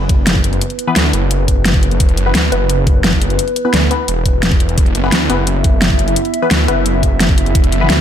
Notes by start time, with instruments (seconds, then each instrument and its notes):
Already playing: detuned saw bass F#1, analog synth pad B3 E4 B4
0.09 kick, closed hi-hat
0.27 snare, closed hi-hat
0.35 kick
0.44 closed hi-hat
0.53 closed hi-hat
0.61 closed hi-hat
0.70 closed hi-hat
0.79 closed hi-hat
0.87 synth stab E3 B3 B4
0.96 detuned saw bass D2, snare, closed hi-hat
1.13 detuned saw bass F#1, closed hi-hat
1.31 closed hi-hat
1.48 kick, closed hi-hat
1.65 snare, closed hi-hat
1.74 kick
1.83 closed hi-hat
1.91 closed hi-hat
2.00 detuned saw bass E1, kick, closed hi-hat
2.09 closed hi-hat
2.17 detuned saw bass F#1, closed hi-hat
2.26 synth stab E3 B3 B4
2.35 detuned saw bass D2, snare, closed hi-hat
2.52 detuned saw bass F#1, synth stab E3 B3 B4, closed hi-hat
2.70 closed hi-hat
2.87 kick, closed hi-hat
3.04 snare, closed hi-hat
3.13 kick
3.22 closed hi-hat
3.30 closed hi-hat
3.39 closed hi-hat
3.48 closed hi-hat
3.56 closed hi-hat
3.65 synth stab E3 B3 B4
3.73 detuned saw bass D2, snare, closed hi-hat
3.91 synth stab E3 B3 B4, closed hi-hat
4.08 detuned saw bass E1, closed hi-hat
4.26 kick, closed hi-hat
4.43 snare, closed hi-hat
4.52 kick
4.60 closed hi-hat
4.69 closed hi-hat
4.78 detuned saw bass E1, analog synth pad E5, kick, closed hi-hat
4.86 closed hi-hat
4.95 detuned saw bass F#1, closed hi-hat
5.04 synth stab E3 B3 B4
5.12 detuned saw bass D2, snare, closed hi-hat
5.30 detuned saw bass F#1, synth stab E3 B3 B4, closed hi-hat
5.47 closed hi-hat
5.64 kick, closed hi-hat
5.82 snare, closed hi-hat
5.90 kick
5.99 closed hi-hat
6.08 closed hi-hat
6.16 closed hi-hat
6.25 closed hi-hat
6.34 closed hi-hat
6.42 synth stab E3 B3 B4
6.51 detuned saw bass D2, snare, closed hi-hat
6.68 detuned saw bass F#1, synth stab E3 B3 B4, closed hi-hat
6.86 closed hi-hat
7.03 kick, closed hi-hat
7.20 snare, closed hi-hat
7.29 kick
7.38 closed hi-hat
7.46 closed hi-hat
7.55 detuned saw bass E1, kick, closed hi-hat
7.64 closed hi-hat
7.72 detuned saw bass F#1, closed hi-hat
7.81 synth stab E3 B3 B4
7.90 detuned saw bass D2, snare, closed hi-hat